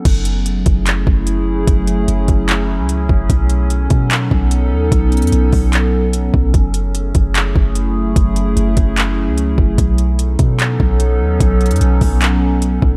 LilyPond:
<<
  \new Staff \with { instrumentName = "Ambient pad" } { \time 4/4 \key fis \dorian \tempo 4 = 148 << { <a e' gis'>1~ | <a e' gis'>1 | <b dis' a'>1~ | <b dis' a'>1 |
<a e' gis'>1~ | <a e' gis'>1 | <b dis' a'>1~ | <b dis' a'>1 | } \\ { <fis cis'>1~ | <fis cis'>1~ | <fis cis'>1~ | <fis cis'>1~ |
<fis cis'>1~ | <fis cis'>1 | <fis cis'>1~ | <fis cis'>1 | } >> }
  \new Staff \with { instrumentName = "808-style bass" } { \clef bass \time 4/4 \key fis \dorian fis,,4. fis,,4 fis,,4. | fis,,4 fis,,8 fis,,4~ fis,,16 cis,8. fis,,8 | b,,4. b,4 b,,4 dis,8 | b,,8. fis,16 b,,8 b,,2 b,,8 |
fis,,4. fis,,4 fis,,4. | fis,,4 fis,,8 fis,,4~ fis,,16 cis,8. fis,,8 | b,,4. b,4 b,,4 dis,8 | b,,8. fis,16 b,,8 b,,2 b,,8 | }
  \new DrumStaff \with { instrumentName = "Drums" } \drummode { \time 4/4 <cymc hh bd>8 hh8 hh8 <hh bd>8 <hc hh>8 bd8 hh4 | <hh bd>8 hh8 hh8 <hh bd>8 <hc hh>4 hh8 bd8 | <hh bd>8 hh8 hh8 <hh bd>8 <hc hh>8 bd8 hh4 | <hh bd>8 hh32 hh32 hh32 hh32 hh8 <hho bd>8 <hc hh>4 hh8 bd8 |
<hh bd>8 hh8 hh8 <hh bd>8 <hc hh>8 bd8 hh4 | <hh bd>8 hh8 hh8 <hh bd>8 <hc hh>4 hh8 bd8 | <hh bd>8 hh8 hh8 <hh bd>8 <hc hh>8 bd8 hh4 | <hh bd>8 hh32 hh32 hh32 hh32 hh8 <hho bd>8 <hc hh>4 hh8 bd8 | }
>>